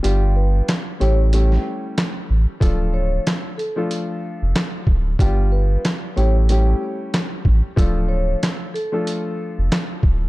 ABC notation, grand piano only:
X:1
M:4/4
L:1/16
Q:"Swing 16ths" 1/4=93
K:Dm
V:1 name="Grand piano"
[G,=B,DFG]6 [G,A,^CEG]2 [G,A,CEG]6- [G,A,CEG] z | [F,A,DFA]6 z [F,A,DFA]8 z | [G,=B,DFG]6 [G,A,^CEG]2 [G,A,CEG]6- [G,A,CEG] z | [F,A,DFA]6 z [F,A,DFA]8 z |]